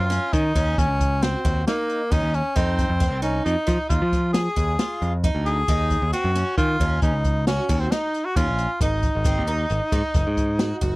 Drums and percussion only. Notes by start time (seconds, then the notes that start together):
0.11 snare, closed hi-hat
0.33 kick, closed hi-hat
0.56 kick, closed hi-hat
0.78 kick, closed hi-hat
1.00 kick, closed hi-hat
1.23 snare, closed hi-hat
1.45 kick, closed hi-hat
1.68 snare, closed hi-hat
1.90 closed hi-hat
2.12 kick, closed hi-hat
2.34 closed hi-hat
2.56 kick, closed hi-hat
2.79 kick, snare, closed hi-hat
3.01 kick, closed hi-hat
3.24 closed hi-hat
3.46 closed hi-hat
3.68 kick, closed hi-hat
3.90 kick, closed hi-hat
4.12 kick, snare, closed hi-hat
4.34 snare, closed hi-hat
4.57 kick, closed hi-hat
4.79 snare, closed hi-hat
5.02 closed hi-hat
5.24 kick, closed hi-hat
5.46 closed hi-hat
5.68 kick, closed hi-hat
5.90 kick, closed hi-hat
6.13 closed hi-hat
6.35 closed hi-hat
6.58 kick, closed hi-hat
6.80 kick, closed hi-hat
7.02 kick, closed hi-hat
7.24 kick, closed hi-hat
7.47 snare, closed hi-hat
7.69 kick, closed hi-hat
7.92 snare, closed hi-hat
8.14 closed hi-hat
8.36 kick, closed hi-hat
8.58 closed hi-hat
8.81 kick, closed hi-hat
9.03 kick, closed hi-hat
9.24 kick, closed hi-hat
9.47 closed hi-hat
9.70 closed hi-hat
9.92 kick, closed hi-hat
10.14 kick, snare, closed hi-hat
10.37 kick, closed hi-hat
10.59 snare, closed hi-hat
10.82 kick, closed hi-hat